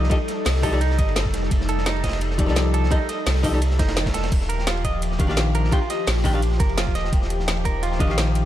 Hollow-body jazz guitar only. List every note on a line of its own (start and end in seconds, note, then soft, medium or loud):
0.10 0.16 F3 medium
0.10 0.17 D#4 medium
0.10 0.17 G4 medium
0.10 0.17 A4 medium
0.10 0.17 D#5 loud
0.62 0.71 F3 loud
0.62 0.71 D#4 medium
0.62 0.71 G4 medium
0.62 0.72 A4 loud
0.62 0.72 D#5 loud
0.72 0.78 F3 medium
0.72 0.78 D#4 medium
0.72 0.78 G4 medium
0.72 0.79 A4 medium
0.72 0.79 D5 medium
2.38 2.45 F3 medium
2.38 2.46 D#4 medium
2.38 2.46 G4 medium
2.38 2.46 A4 medium
2.38 2.47 D5 medium
2.46 2.89 F3 medium
2.46 2.89 D#4 medium
2.46 2.90 G4 medium
2.46 2.90 A4 medium
2.46 2.90 D5 medium
2.90 2.97 F3 medium
2.90 2.97 D#4 medium
2.90 2.98 G4 medium
2.90 2.98 A4 medium
2.90 2.98 D#5 loud
3.43 3.51 F3 loud
3.43 3.52 D#4 medium
3.43 3.52 G4 medium
3.43 3.52 A4 medium
3.43 3.53 D#5 loud
3.52 3.58 F3 medium
3.52 3.59 D#4 medium
3.52 3.59 G4 medium
3.52 3.59 A4 medium
3.52 3.59 D5 medium
5.19 5.26 D#3 medium
5.19 5.27 D4 medium
5.19 5.27 G4 medium
5.19 5.27 F5 medium
5.27 5.69 D#3 medium
5.27 5.70 D4 medium
5.27 5.71 G4 medium
5.27 5.71 F5 loud
5.71 5.78 D#3 medium
5.71 5.78 D4 medium
5.71 5.79 G4 medium
5.71 5.79 G5 loud
6.24 6.32 D#3 loud
6.24 6.33 D4 medium
6.24 6.33 G4 medium
6.24 6.33 G5 loud
6.33 6.39 D#3 medium
6.33 6.39 D4 medium
6.33 6.40 G4 medium
6.33 6.40 F5 loud
7.99 8.06 D#3 medium
7.99 8.07 D4 medium
7.99 8.08 G4 medium
7.99 8.08 F5 medium
8.07 8.45 D#3 medium
8.07 8.45 G4 medium
8.07 8.45 F5 medium